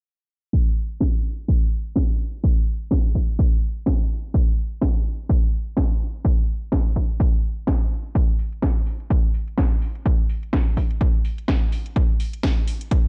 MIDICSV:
0, 0, Header, 1, 2, 480
1, 0, Start_track
1, 0, Tempo, 476190
1, 536, Time_signature, 4, 2, 24, 8
1, 13186, End_track
2, 0, Start_track
2, 0, Title_t, "Drums"
2, 536, Note_on_c, 9, 36, 112
2, 637, Note_off_c, 9, 36, 0
2, 1013, Note_on_c, 9, 38, 109
2, 1016, Note_on_c, 9, 36, 105
2, 1114, Note_off_c, 9, 38, 0
2, 1117, Note_off_c, 9, 36, 0
2, 1496, Note_on_c, 9, 36, 114
2, 1597, Note_off_c, 9, 36, 0
2, 1972, Note_on_c, 9, 38, 110
2, 1976, Note_on_c, 9, 36, 110
2, 2073, Note_off_c, 9, 38, 0
2, 2077, Note_off_c, 9, 36, 0
2, 2456, Note_on_c, 9, 36, 119
2, 2557, Note_off_c, 9, 36, 0
2, 2932, Note_on_c, 9, 38, 118
2, 2936, Note_on_c, 9, 36, 113
2, 3033, Note_off_c, 9, 38, 0
2, 3037, Note_off_c, 9, 36, 0
2, 3176, Note_on_c, 9, 36, 63
2, 3277, Note_off_c, 9, 36, 0
2, 3416, Note_on_c, 9, 36, 126
2, 3517, Note_off_c, 9, 36, 0
2, 3893, Note_on_c, 9, 38, 113
2, 3896, Note_on_c, 9, 36, 110
2, 3994, Note_off_c, 9, 38, 0
2, 3997, Note_off_c, 9, 36, 0
2, 4376, Note_on_c, 9, 36, 123
2, 4477, Note_off_c, 9, 36, 0
2, 4854, Note_on_c, 9, 38, 117
2, 4856, Note_on_c, 9, 36, 115
2, 4954, Note_off_c, 9, 38, 0
2, 4957, Note_off_c, 9, 36, 0
2, 5337, Note_on_c, 9, 36, 127
2, 5437, Note_off_c, 9, 36, 0
2, 5813, Note_on_c, 9, 38, 108
2, 5817, Note_on_c, 9, 36, 108
2, 5914, Note_off_c, 9, 38, 0
2, 5917, Note_off_c, 9, 36, 0
2, 6297, Note_on_c, 9, 36, 115
2, 6397, Note_off_c, 9, 36, 0
2, 6773, Note_on_c, 9, 38, 115
2, 6777, Note_on_c, 9, 36, 110
2, 6874, Note_off_c, 9, 38, 0
2, 6878, Note_off_c, 9, 36, 0
2, 7017, Note_on_c, 9, 36, 60
2, 7117, Note_off_c, 9, 36, 0
2, 7257, Note_on_c, 9, 36, 121
2, 7358, Note_off_c, 9, 36, 0
2, 7733, Note_on_c, 9, 38, 107
2, 7737, Note_on_c, 9, 36, 111
2, 7834, Note_off_c, 9, 38, 0
2, 7838, Note_off_c, 9, 36, 0
2, 8217, Note_on_c, 9, 36, 118
2, 8217, Note_on_c, 9, 42, 50
2, 8318, Note_off_c, 9, 36, 0
2, 8318, Note_off_c, 9, 42, 0
2, 8457, Note_on_c, 9, 46, 97
2, 8558, Note_off_c, 9, 46, 0
2, 8593, Note_on_c, 9, 42, 60
2, 8693, Note_on_c, 9, 38, 106
2, 8694, Note_off_c, 9, 42, 0
2, 8697, Note_on_c, 9, 36, 107
2, 8697, Note_on_c, 9, 42, 46
2, 8794, Note_off_c, 9, 38, 0
2, 8797, Note_off_c, 9, 36, 0
2, 8797, Note_off_c, 9, 42, 0
2, 8937, Note_on_c, 9, 46, 98
2, 9037, Note_off_c, 9, 46, 0
2, 9073, Note_on_c, 9, 42, 64
2, 9174, Note_off_c, 9, 42, 0
2, 9177, Note_on_c, 9, 36, 123
2, 9177, Note_on_c, 9, 42, 47
2, 9277, Note_off_c, 9, 36, 0
2, 9277, Note_off_c, 9, 42, 0
2, 9416, Note_on_c, 9, 46, 98
2, 9517, Note_off_c, 9, 46, 0
2, 9552, Note_on_c, 9, 42, 62
2, 9653, Note_off_c, 9, 42, 0
2, 9653, Note_on_c, 9, 38, 110
2, 9656, Note_on_c, 9, 42, 50
2, 9657, Note_on_c, 9, 36, 109
2, 9754, Note_off_c, 9, 38, 0
2, 9757, Note_off_c, 9, 36, 0
2, 9757, Note_off_c, 9, 42, 0
2, 9896, Note_on_c, 9, 46, 104
2, 9997, Note_off_c, 9, 46, 0
2, 10033, Note_on_c, 9, 42, 59
2, 10134, Note_off_c, 9, 42, 0
2, 10137, Note_on_c, 9, 36, 111
2, 10137, Note_on_c, 9, 42, 50
2, 10237, Note_off_c, 9, 36, 0
2, 10237, Note_off_c, 9, 42, 0
2, 10377, Note_on_c, 9, 46, 93
2, 10478, Note_off_c, 9, 46, 0
2, 10513, Note_on_c, 9, 42, 60
2, 10614, Note_off_c, 9, 42, 0
2, 10614, Note_on_c, 9, 38, 107
2, 10616, Note_on_c, 9, 36, 107
2, 10617, Note_on_c, 9, 42, 51
2, 10715, Note_off_c, 9, 38, 0
2, 10717, Note_off_c, 9, 36, 0
2, 10718, Note_off_c, 9, 42, 0
2, 10856, Note_on_c, 9, 36, 59
2, 10857, Note_on_c, 9, 46, 99
2, 10957, Note_off_c, 9, 36, 0
2, 10958, Note_off_c, 9, 46, 0
2, 10993, Note_on_c, 9, 42, 67
2, 11094, Note_off_c, 9, 42, 0
2, 11096, Note_on_c, 9, 36, 113
2, 11097, Note_on_c, 9, 42, 50
2, 11197, Note_off_c, 9, 36, 0
2, 11198, Note_off_c, 9, 42, 0
2, 11337, Note_on_c, 9, 46, 90
2, 11438, Note_off_c, 9, 46, 0
2, 11474, Note_on_c, 9, 42, 60
2, 11574, Note_off_c, 9, 42, 0
2, 11574, Note_on_c, 9, 38, 105
2, 11576, Note_on_c, 9, 36, 111
2, 11577, Note_on_c, 9, 42, 52
2, 11674, Note_off_c, 9, 38, 0
2, 11677, Note_off_c, 9, 36, 0
2, 11678, Note_off_c, 9, 42, 0
2, 11817, Note_on_c, 9, 46, 102
2, 11918, Note_off_c, 9, 46, 0
2, 11954, Note_on_c, 9, 42, 64
2, 12054, Note_off_c, 9, 42, 0
2, 12056, Note_on_c, 9, 36, 109
2, 12057, Note_on_c, 9, 42, 50
2, 12157, Note_off_c, 9, 36, 0
2, 12158, Note_off_c, 9, 42, 0
2, 12297, Note_on_c, 9, 46, 94
2, 12397, Note_off_c, 9, 46, 0
2, 12433, Note_on_c, 9, 42, 64
2, 12533, Note_on_c, 9, 38, 111
2, 12534, Note_off_c, 9, 42, 0
2, 12537, Note_on_c, 9, 36, 107
2, 12537, Note_on_c, 9, 42, 55
2, 12634, Note_off_c, 9, 38, 0
2, 12637, Note_off_c, 9, 36, 0
2, 12638, Note_off_c, 9, 42, 0
2, 12777, Note_on_c, 9, 46, 96
2, 12878, Note_off_c, 9, 46, 0
2, 12913, Note_on_c, 9, 42, 66
2, 13014, Note_off_c, 9, 42, 0
2, 13016, Note_on_c, 9, 36, 111
2, 13017, Note_on_c, 9, 42, 51
2, 13117, Note_off_c, 9, 36, 0
2, 13118, Note_off_c, 9, 42, 0
2, 13186, End_track
0, 0, End_of_file